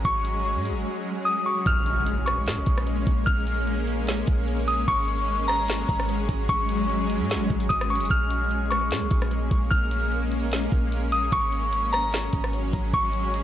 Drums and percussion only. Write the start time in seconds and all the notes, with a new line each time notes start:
0.05 kick, closed hi-hat
0.25 closed hi-hat
0.45 closed hi-hat
0.65 closed hi-hat
1.66 kick, closed hi-hat
1.86 closed hi-hat
2.06 closed hi-hat
2.26 cross-stick, closed hi-hat
2.46 snare, closed hi-hat
2.66 kick, closed hi-hat
2.78 cross-stick
2.87 closed hi-hat
3.07 kick, closed hi-hat
3.27 kick, closed hi-hat
3.47 closed hi-hat
3.67 closed hi-hat
3.87 closed hi-hat
4.07 snare, closed hi-hat
4.27 kick, closed hi-hat
4.48 closed hi-hat
4.68 closed hi-hat
4.88 kick, closed hi-hat
5.08 closed hi-hat
5.28 closed hi-hat
5.48 cross-stick, closed hi-hat
5.68 snare, closed hi-hat
5.89 kick, closed hi-hat
6.00 cross-stick
6.09 closed hi-hat
6.29 kick, closed hi-hat
6.49 kick, closed hi-hat
6.69 closed hi-hat
6.89 closed hi-hat
7.10 closed hi-hat
7.30 snare, closed hi-hat
7.50 kick, closed hi-hat
7.60 closed hi-hat
7.70 kick, closed hi-hat
7.81 cross-stick
7.90 closed hi-hat
7.95 closed hi-hat
8.00 closed hi-hat
8.05 closed hi-hat
8.10 kick, closed hi-hat
8.30 closed hi-hat
8.51 closed hi-hat
8.71 cross-stick, closed hi-hat
8.91 snare, closed hi-hat
9.11 kick, closed hi-hat
9.22 cross-stick
9.31 closed hi-hat
9.51 kick, closed hi-hat
9.71 kick, closed hi-hat
9.91 closed hi-hat
10.12 closed hi-hat
10.32 closed hi-hat
10.52 snare, closed hi-hat
10.72 kick, closed hi-hat
10.92 closed hi-hat
11.12 closed hi-hat
11.32 kick, closed hi-hat
11.52 closed hi-hat
11.73 closed hi-hat
11.93 cross-stick, closed hi-hat
12.13 snare, closed hi-hat
12.33 kick, closed hi-hat
12.44 cross-stick
12.53 closed hi-hat
12.73 kick, closed hi-hat
12.93 kick, closed hi-hat
13.13 closed hi-hat
13.34 closed hi-hat